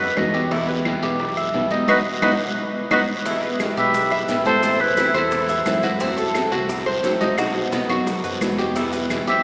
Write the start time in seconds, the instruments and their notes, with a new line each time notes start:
0.00 analog synth bass F#2, clarinet B4, cuban tres B4, high bongo, high conga
0.16 analog synth bass E2, steel-string acoustic guitar B2 F#3 B3 D#4 F#4, clarinet D#5, high bongo, low bongo, high conga, short guiro, claves
0.34 steel-string acoustic guitar B3 D#4 F#4, cuban tres G4, high bongo, short guiro
0.51 steel-string acoustic guitar B2 E3 G3 B3 E4, cuban tres E4, high bongo, high conga, long guiro
0.68 steel-string acoustic guitar G3 B3 E4, cuban tres B4, high bongo, high conga
0.85 steel-string acoustic guitar B2 E3 G3 B3 E4, high bongo, high conga, short guiro, claves
1.02 analog synth bass B1, steel-string acoustic guitar G3 B3 E4, cuban tres G4, high conga, short guiro
1.20 muted steel-string acoustic guitar stroke, high bongo, high conga, long guiro
1.37 cuban tres E5, high bongo, high conga, claves
1.54 analog synth bass B1, steel-string acoustic guitar B2 E3 G3 B3 E4, high bongo, low bongo, high conga, short guiro
1.71 steel-string acoustic guitar G3 B3 E4, cuban tres D#4, high bongo, high conga, short guiro
1.88 analog synth bass B1, steel-string acoustic guitar F#3 B3 D#4, cuban tres D#4 F#4 B4, clarinet B4, low bongo, high conga, long guiro, claves
2.22 analog synth bass B1, steel-string acoustic guitar F#3 B3 D#4, cuban tres D#4 F#4 B4, clarinet B4, low bongo, high conga, long guiro, claves
2.91 analog synth bass B1, steel-string acoustic guitar F#3 B3 D#4, cuban tres D#4 F#4 B4, clarinet B4, low bongo, high conga, long guiro, claves
3.25 steel-string acoustic guitar B2 E3 G3 B3 E4, cuban tres E4, high bongo, high conga, long guiro, maracas
3.42 steel-string acoustic guitar G3 B3 E4, cuban tres B4, high bongo, high conga
3.59 steel-string acoustic guitar B2 E3 G3 B3 E4, high bongo, high conga, short guiro, claves, maracas
3.77 analog synth bass B1, steel-string acoustic guitar G3 B3 E4, cuban tres G4, flute B4, clarinet E5, high conga, short guiro, maracas
3.94 muted steel-string acoustic guitar stroke, high bongo, high conga, long guiro, maracas
4.11 cuban tres E5, high bongo, high conga, claves
4.28 analog synth bass A1, steel-string acoustic guitar B2 E3 G3 B3 E4, high bongo, low bongo, high conga, short guiro, maracas
4.45 steel-string acoustic guitar G3 B3 E4, cuban tres A4, flute A4, clarinet C5, high bongo, high conga, short guiro, maracas
4.62 steel-string acoustic guitar E3 A3 C4 E4, cuban tres C5, high bongo, high conga, long guiro, claves, maracas
4.80 steel-string acoustic guitar A3 C4 E4, flute E4, clarinet B4, high bongo, high conga
4.97 steel-string acoustic guitar E3 A3 C4 E4, cuban tres E4, high bongo, high conga, short guiro, maracas
5.14 analog synth bass E2, steel-string acoustic guitar A3 C4 E4, flute E4, clarinet A4, cuban tres C5, high conga, short guiro, claves, maracas
5.31 muted steel-string acoustic guitar stroke, high bongo, high conga, long guiro, maracas
5.49 cuban tres E5, high bongo, high conga, maracas
5.65 analog synth bass F#2, steel-string acoustic guitar E3 A3 C4 E4, high bongo, low bongo, high conga, short guiro, claves, maracas
5.82 steel-string acoustic guitar A3 C4 E4, cuban tres F#4, high bongo, high conga, short guiro, maracas
6.00 steel-string acoustic guitar F#3 A3 C4 F#4, cuban tres C4, high bongo, high conga, long guiro, maracas
6.17 steel-string acoustic guitar A3 C4 F#4, cuban tres A4, high bongo, high conga, maracas
6.34 steel-string acoustic guitar F#3 A3 C4 F#4, high bongo, high conga, short guiro, claves, maracas
6.51 analog synth bass C2, steel-string acoustic guitar A3 C4 F#4, cuban tres F#4, high conga, short guiro, maracas
6.69 muted steel-string acoustic guitar stroke, high bongo, high conga, long guiro, maracas
6.86 cuban tres C5, high bongo, high conga, claves
7.02 analog synth bass B1, steel-string acoustic guitar F#3 A3 C4 F#4, high bongo, low bongo, high conga, short guiro, maracas
7.20 steel-string acoustic guitar A3 C4 F#4, cuban tres D#4, high bongo, high conga, short guiro, maracas
7.37 steel-string acoustic guitar B2 F#3 B3 D#4 F#4, cuban tres F#4, high bongo, high conga, long guiro, claves, maracas
7.54 steel-string acoustic guitar B3 D#4 F#4, high bongo, high conga
7.72 steel-string acoustic guitar B2 F#3 B3 D#4 F#4, cuban tres B3, high bongo, high conga, short guiro, maracas
7.89 analog synth bass F#2, steel-string acoustic guitar B3 D#4 F#4, cuban tres F#4, high conga, short guiro, claves, maracas
8.06 muted steel-string acoustic guitar stroke, high bongo, high conga, long guiro, maracas
8.24 analog synth bass F#2, cuban tres B4, high bongo, high conga, maracas
8.41 analog synth bass E2, steel-string acoustic guitar B2 F#3 B3 D#4 F#4, high bongo, low bongo, high conga, short guiro, claves, maracas
8.58 steel-string acoustic guitar B3 D#4 F#4, cuban tres G4, high bongo, short guiro, maracas
8.75 steel-string acoustic guitar B2 E3 G3 B3 E4, cuban tres E4, high bongo, high conga, long guiro, maracas
8.92 steel-string acoustic guitar G3 B3 E4, cuban tres B4, high bongo, high conga, maracas
9.10 steel-string acoustic guitar B2 E3 G3 B3 E4, high bongo, high conga, short guiro, claves, maracas
9.27 analog synth bass B1, steel-string acoustic guitar G3 B3 E4, cuban tres G4, flute C5, clarinet E5, high conga, short guiro, maracas